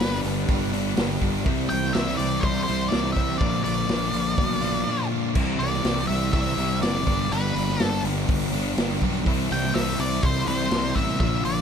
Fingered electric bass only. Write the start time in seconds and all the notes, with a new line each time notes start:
0.00 G1
0.25 G1
0.49 G1
0.99 G1
1.22 G1
1.47 C2
1.72 C2
1.96 C2
2.20 C2
2.43 C2
2.69 C2
2.93 C2
3.17 C2
3.41 A#1
3.65 A#1
3.89 A#1
4.13 A#1
4.38 B1
5.36 C2
5.60 C2
5.85 C2
6.09 C2
6.34 C2
6.57 C2
6.82 F#1
7.07 G1
7.31 G1
7.56 G1
7.81 G1
8.04 G1
8.29 G1
8.78 G1
9.02 B1
9.27 C2
9.51 C2
9.76 C2
10.00 C2
10.23 C2
10.47 C2
10.72 C2
10.96 A1
11.21 A#1
11.44 A#1